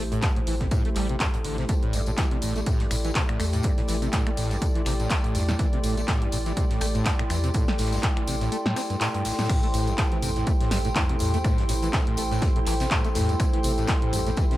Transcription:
Already playing: A3 E4 G4 A4 C5 G5 C6
0.00 A1
0.12 A2, closed hi-hat
0.22 G2, kick, snare, clap, closed hi-hat, tambourine
0.36 A2, closed hi-hat
0.47 A1 E3, open hi-hat, tambourine
0.60 C3, kick, snare, closed hi-hat
0.71 A2, kick, closed hi-hat, tambourine
0.85 A3, closed hi-hat
0.96 A1 G3, clap, open hi-hat, tambourine
1.09 C3, closed hi-hat
1.20 G2, kick, snare, clap, closed hi-hat, tambourine
1.34 A2, closed hi-hat
1.44 A1 D3, open hi-hat, tambourine
1.58 C3, snare, closed hi-hat
1.69 A3 D5, kick, closed hi-hat, tambourine
1.83 A2, closed hi-hat
1.93 A1 G2, open hi-hat, tambourine
2.06 A2, closed hi-hat, tambourine
2.17 E3, kick, snare, clap, closed hi-hat, tambourine
2.31 C3, closed hi-hat
2.42 A1 A2, open hi-hat, tambourine
2.56 A3, snare, closed hi-hat, tambourine
2.66 A2, kick, closed hi-hat, tambourine
2.80 G2, snare, closed hi-hat
2.91 A1 A2, finger snap, open hi-hat, tambourine
3.04 E3, closed hi-hat, tambourine
3.15 C3, kick, snare, clap, closed hi-hat, tambourine
3.29 A2, finger snap, closed hi-hat
3.40 E2 A3, finger snap, open hi-hat, tambourine
3.53 A2, closed hi-hat, tambourine
3.63 G2, kick, closed hi-hat, tambourine
3.78 A2, snare, closed hi-hat
3.88 A1 E3, snare, open hi-hat, tambourine
3.89 tambourine
4.02 C3, closed hi-hat, tambourine
4.13 A2, kick, snare, clap, closed hi-hat, tambourine
4.27 A3, finger snap, closed hi-hat
4.37 A1 A2, open hi-hat, tambourine
4.51 G2, snare, closed hi-hat, tambourine
4.61 A2, kick, closed hi-hat, tambourine
4.75 E3, closed hi-hat
4.86 A1 C3, finger snap, clap, open hi-hat, tambourine
5.00 A2, closed hi-hat, tambourine
5.10 A3, kick, snare, clap, closed hi-hat, tambourine
5.24 A2, closed hi-hat
5.35 E2 G2, open hi-hat, tambourine
5.48 A2, snare, closed hi-hat, tambourine
5.59 E3, kick, closed hi-hat, tambourine
5.73 C3, closed hi-hat
5.83 A1 A2, open hi-hat, tambourine
5.97 A3, closed hi-hat, tambourine
6.08 A2, kick, snare, clap, closed hi-hat, tambourine
6.22 G2, closed hi-hat
6.32 A1 A2, open hi-hat, tambourine
6.46 E3, snare, closed hi-hat, tambourine
6.57 C3, kick, closed hi-hat, tambourine
6.70 A2, snare, closed hi-hat
6.81 A1 A3, finger snap, open hi-hat, tambourine
6.95 A2, closed hi-hat, tambourine
7.05 G2, kick, snare, clap, closed hi-hat, tambourine
7.19 A2, finger snap, closed hi-hat
7.30 E2 E3, finger snap, open hi-hat, tambourine
7.44 C3, closed hi-hat, tambourine
7.54 A2, kick, closed hi-hat, tambourine
7.68 A3, snare, closed hi-hat
7.78 A1 A2, snare, open hi-hat, tambourine
7.86 snare, tambourine
7.92 G2, snare, closed hi-hat, tambourine
7.97 snare, tambourine
8.03 A2, kick, snare, clap, closed hi-hat, tambourine
8.17 E3, finger snap, closed hi-hat
8.27 A1 C3, open hi-hat, tambourine
8.41 A2, snare, closed hi-hat, tambourine
8.52 A3, closed hi-hat, tambourine
8.65 A2, snare, closed hi-hat
8.76 C4, finger snap, clap, open hi-hat, tambourine
8.90 G2, closed hi-hat, tambourine
9.01 A2, snare, clap, closed hi-hat, tambourine
9.14 G2, closed hi-hat
9.25 A1, snare, open hi-hat, tambourine
9.32 snare, tambourine
9.38 A2, snare, closed hi-hat, tambourine
9.44 snare, tambourine
9.49 A2 A3 E4 G4 C5, finger snap, kick, closed hi-hat, crash, tambourine
9.63 A3, closed hi-hat
9.74 A1 A2, open hi-hat, tambourine
9.87 G2, closed hi-hat, tambourine
9.98 A2, kick, snare, clap, closed hi-hat, tambourine
10.12 E3, closed hi-hat
10.22 A1 C3, mid tom, open hi-hat, tambourine
10.36 A2, snare, closed hi-hat, tambourine
10.46 A3, kick, closed hi-hat, tambourine
10.61 A2, snare, closed hi-hat
10.71 A1 G2, snare, open hi-hat, tambourine
10.84 A2, closed hi-hat, tambourine
10.95 E3, kick, snare, clap, closed hi-hat, mid tom, tambourine
11.09 C3, closed hi-hat
11.19 E2 A2, open hi-hat, tambourine
11.34 A3, closed hi-hat, mid tom, tambourine
11.44 A2, finger snap, kick, closed hi-hat, tambourine
11.58 G2, snare, closed hi-hat
11.68 A1 A2, snare, open hi-hat, tambourine
11.82 E3, closed hi-hat, tambourine
11.93 C3, kick, snare, clap, closed hi-hat, tambourine
12.07 A2, closed hi-hat
12.17 A1 A3, open hi-hat, tambourine
12.31 A2, snare, closed hi-hat, tambourine
12.42 G2, kick, snare, closed hi-hat, tambourine
12.56 A2, closed hi-hat
12.66 A1 E3, clap, open hi-hat, tambourine
12.80 C3, snare, closed hi-hat, tambourine
12.91 A2, kick, clap, closed hi-hat, tambourine
13.04 A3, closed hi-hat, tambourine
13.15 E2 A2, snare, mid tom, open hi-hat, tambourine
13.29 G2, closed hi-hat, tambourine
13.40 A2, finger snap, kick, closed hi-hat, tambourine
13.53 E3, closed hi-hat
13.63 A1 C3, open hi-hat, tambourine
13.78 A2, closed hi-hat, tambourine
13.87 A3, kick, snare, clap, closed hi-hat, tambourine
13.90 tambourine
14.02 A2, closed hi-hat
14.13 A1 G2, mid tom, open hi-hat, tambourine
14.26 A2, snare, closed hi-hat, tambourine
14.37 E3, kick, closed hi-hat, tambourine
14.51 C3, snare, closed hi-hat

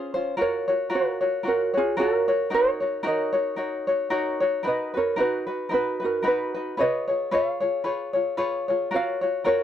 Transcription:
Already playing: C#4 F4 G#4 C5
0.14 C#4 F4 C5
0.37 F4 F#4 A#4 C#5
0.41 A#4 C#5
0.68 F4 F#4 C#5
0.90 F4 F#4 A#4 C#5
0.95 F#4 A#4
1.21 F4 F#4 C#5
1.43 F4 F#4 A#4 C#5
1.47 F#4 A#4
1.74 F4 F#4 G#4 C#5
1.78 F4
1.97 F4 F#4 A#4 C#5
2.28 F4 F#4 C#5
2.50 D#4 F#4 A#4 C#5
2.54 A#4 C#5
2.80 D#4 F#4 C#5
3.03 D#4 F#4 A#4 C#5 D#5
3.08 A#4
3.33 D#4 F#4 C#5
3.56 D#4 F#4 A#4 C#5
3.87 D#4 F#4 C#5
4.10 D#4 F#4 A#4 C#5
4.40 D#4 F#4 C#5
4.63 D#4 F#4 A#4 B4
4.67 B4 D#5
4.94 D#4 F#4 B4 C#5
4.98 A#4
5.16 D#4 F#4 A#4 B4
5.21 F#4
5.47 D#4 F#4 B4
5.69 D#4 F#4 A#4 B4
5.74 F#4 B4
6.00 D#4 F#4 B4
6.04 F#4 A#4
6.22 D#4 F#4 A#4 B4
6.27 F#4 B4
6.54 D#4 F#4 B4
6.77 F4 G#4 B4 C#5 D#5
6.82 B4
7.08 F4 G#4 C#5
7.31 F4 G#4 B4 C#5 F5
7.60 F4 G#4 C#5
7.84 F4 G#4 B4 C#5
8.13 F4 G#4 C#5
8.37 F4 G#4 B4 C#5
8.68 F4 G#4 C#5
8.91 F4 F#4 A#4 C#5
8.96 F5
9.21 F4 F#4 C#5
9.44 F4 F#4 A#4 C#5

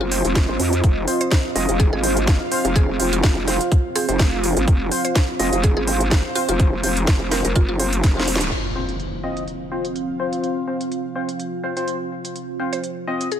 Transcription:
Already playing: F#1 C4 F4 C5 D#5
0.01 F4
0.12 C4 F4 C5, open hi-hat
0.25 F1, closed hi-hat
0.35 kick, snare, closed hi-hat
0.49 G#1 C4 F4 C5
0.60 F2, open hi-hat
0.73 closed hi-hat
0.83 F1 F5, kick, closed hi-hat
1.08 C4 F4 C5, open hi-hat
1.21 C5, closed hi-hat
1.31 kick, snare, closed hi-hat
1.55 F1 C4 F4 D#5, open hi-hat
1.69 F1, closed hi-hat
1.80 G#4, kick, closed hi-hat
1.93 G#1 G#4
2.03 C4 F4 C5, open hi-hat
2.17 closed hi-hat
2.27 F5, kick, snare, closed hi-hat
2.52 C4 F4 C5, open hi-hat
2.65 F1, closed hi-hat
2.76 G#4, kick, closed hi-hat
2.89 F1
3.00 F1 C4 F4 C5, open hi-hat
3.13 F4, closed hi-hat
3.24 F1 F4, kick, snare, closed hi-hat
3.48 C4 F4 C5, snare, open hi-hat
3.61 closed hi-hat
3.72 kick, closed hi-hat
3.96 C4 F4 G#4 C5, open hi-hat
4.09 F1 C4 F4 C5, closed hi-hat
4.19 kick, snare, closed hi-hat
4.44 open hi-hat
4.57 G#1, closed hi-hat
4.68 F1 C5, kick, closed hi-hat
4.91 C4 F4 C5, open hi-hat
5.05 C5, closed hi-hat
5.16 kick, snare, closed hi-hat
5.39 F1 C4 F4 D#5, open hi-hat
5.53 F1, closed hi-hat
5.63 G#4, kick, closed hi-hat
5.77 G#1 G#4
5.87 C4 F4 C5, open hi-hat
6.01 closed hi-hat
6.11 A#5, kick, snare, closed hi-hat
6.35 C4 F4 C5, open hi-hat
6.49 F1 F4, closed hi-hat
6.59 kick, closed hi-hat
6.73 F1
6.83 F1 C4 F4 C5, open hi-hat
6.97 closed hi-hat
7.07 F1, kick, snare, closed hi-hat
7.31 C4 F4 A#4 C5, snare, open hi-hat
7.45 F1 A#4, closed hi-hat
7.56 F#1 F4, kick, closed hi-hat
7.69 F4
7.80 C4 F4 C5, open hi-hat
7.93 closed hi-hat
8.04 F1, kick, snare, closed hi-hat
8.17 C4 F4 C5, snare
8.28 open hi-hat
8.36 snare
8.41 closed hi-hat
8.51 C4 F4 F5, closed hi-hat, crash, impact
8.76 C4 F4 C5
8.89 closed hi-hat
9.00 C5, closed hi-hat
9.10 F5
9.24 C4 F4 D#5
9.37 closed hi-hat
9.48 closed hi-hat
9.72 C4 F4 C5
9.85 closed hi-hat
9.96 closed hi-hat
10.20 C4 F4 C5
10.33 closed hi-hat
10.44 closed hi-hat
10.68 C4 F4 C5
10.81 closed hi-hat
10.92 closed hi-hat
11.16 C4 F4 C5
11.29 closed hi-hat
11.40 closed hi-hat
11.64 C4 F4 C5
11.77 C4 F4 C5, closed hi-hat
11.88 closed hi-hat
12.25 closed hi-hat
12.36 closed hi-hat
12.60 C4 F4 C5
12.73 C5, closed hi-hat
12.84 closed hi-hat
13.07 C4 F4 D#5
13.21 closed hi-hat
13.31 G#4, closed hi-hat

